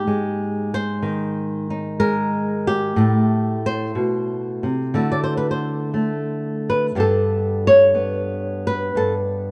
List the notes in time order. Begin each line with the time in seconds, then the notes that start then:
Already playing: G#2 A#3 D#4 G4
0.07 G#3
0.74 C5
1.02 D#3
1.70 D#4
2.00 G#3 A#4
2.67 G4
2.96 A2 A3 E4
3.66 C5
3.95 B2
4.63 C3
4.94 D3 A3 E4 F#4
5.12 D5
5.24 C5
5.37 B4
5.51 C5
5.94 A3
6.70 B4
6.95 G2 B3 D4 G4
7.00 A4
7.67 C#5
7.95 B3
8.67 B4
8.95 G2 A4